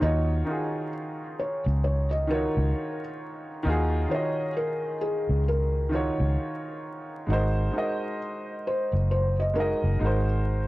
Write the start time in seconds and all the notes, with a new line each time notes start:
0.00 D#2 D#3 D#4 F4 D#5
0.04 F#4 C#5
0.45 D#3 D#4 F4
0.50 F#4 G#4
1.39 C#5
1.66 C#2
1.84 C#5
2.11 D#5
2.27 D#3 D#4 F4 A#4
2.32 F#4 C#5
2.57 C#2
3.63 D#2 D#3 D#4 F4
3.68 F#4 G#4
4.08 D#3 D#4 F4 C#5
4.13 F#4 D#5
4.57 A#4
5.01 G#4
5.29 C#2
5.48 A#4
5.89 D#3 D#4 F4
5.94 F#4 C#5
6.20 C#2
7.27 G#1 G#3 D#4 F#4 D#5
7.32 A#4 C5
7.72 G#3 D#4 F#4
7.76 A#4 D#5
8.67 C5
8.93 F#1
9.11 C5
9.40 D#5
9.54 G#3 D#4 F#4 A#4
9.59 A#4 D#5
9.84 F#1
9.99 G#1 G#3 D#4 F#4
10.04 A#4 C5